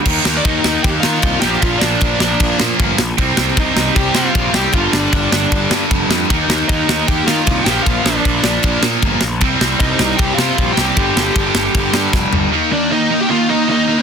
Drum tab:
CC |x-x-x-x-|x-x-x-x-|x-x-x-x-|x-x-x-x-|
SD |-o-o-o-o|-o-o-o-o|-o-o-o-o|-o-o-o-o|
FT |--------|--------|--------|--------|
BD |o-o-o-o-|o-o-o-o-|o-o-o-o-|o-o-o-o-|

CC |x-x-x-x-|x-x-x-x-|x-x-x-x-|x-x-x---|
SD |-o-o-o-o|-o-o-o-o|-o-o-o-o|-o-o-oo-|
FT |--------|--------|--------|-------o|
BD |o-o-o-o-|o-o-o-o-|o-o-o-o-|o-o-o-o-|

CC |--------|
SD |--------|
FT |--------|
BD |--------|